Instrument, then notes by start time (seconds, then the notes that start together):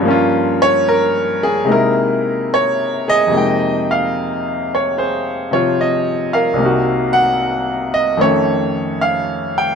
upright piano
0.00 G2 F3
0.05 A#3 C#4
0.10 F4
0.62 C#5
0.89 A#4
1.43 G#4
1.65 C3 G#3 A#3 D#4
1.69 E4 A#4
2.54 C#5
3.08 G#4 D#5
3.27 F2 C3
3.31 G#3 A#3 D#4
3.37 G5
3.91 F5
4.75 C#5
4.98 G#4 C5
5.51 C3 F3 F4 C#5
5.81 D#5
6.33 A#4 F5
6.53 C2 C3
6.59 A#3 D#4
6.65 F#4
7.13 F#5
7.94 D#5
8.17 F2 D#3 A3 C#4
8.21 A4 C#5
9.01 F5
9.58 G5